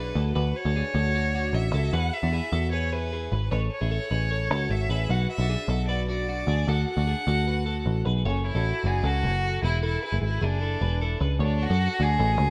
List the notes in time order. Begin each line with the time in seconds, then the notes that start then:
Already playing: B1 D4 G#4 B4
0.15 D2 F#4 A4
0.35 D2 F#4 B4
0.56 C#5
0.65 D2 F#4 A4
0.76 D4 G#4
0.94 D2 F#4 A4
1.15 D4 F#4
1.35 D4 F#4
1.53 A1 E5
1.73 C#2 F#4 A4
1.93 E2 G#4 B4 F#5
2.13 E5
2.23 E2 D4 F#4
2.32 E4 G#4
2.52 E2 F#4 A4
2.72 G#4 B4 C#5
2.92 E4 G#4 B4
3.13 E4 G#4
3.32 G#1 G#4 B4
3.51 A1 A4 B4 C#5
3.71 C#5
3.81 A1 E4 G#4
3.91 E4 A4
4.11 A1 G#4 B4
4.31 A4 C#5
4.50 C#2 F#4 A4
4.70 G#1 E5
4.89 A1 G#4 B4
5.09 B1 F#4 B4 F#5
5.29 E5
5.38 B1 D4 F#4
5.50 D4 G#4
5.68 B1 F#4 A4
5.88 F#4 B4 D5
6.09 D4 F#4 D5
6.29 D4 F#4
6.47 D2 D4 G#4
6.68 D2 F#4 A4 F#5
6.88 F#5
6.97 D2 D4 F#4
7.07 D4 G#4
7.27 D2 F#4 A4
7.47 F#4 B4
7.66 F#4 A4
7.86 A1
8.06 B1 G#4 B4
8.25 F#1 C#4 A4 C#5
8.47 E4
8.55 A1 F#4 A4
8.84 F#1 D4 F#4 G#4
9.03 C#2 F#4 A4
9.23 F#1
9.63 E1 E4 G#4
9.83 E4 A4
10.03 E4 G#4 B4
10.12 F#1
10.21 G#1 E4
10.41 F#1 D4 E4 G#4
10.61 E4 A4
10.81 E1 G#4 B4
11.02 E4 A4
11.20 C#2 G#4 B4
11.39 D2 D4 A4 C#5
11.63 F#4
11.70 F#2 F#4 A4
12.00 D2 D4 F#4 G#4
12.19 A1 A3 F#4
12.39 C#2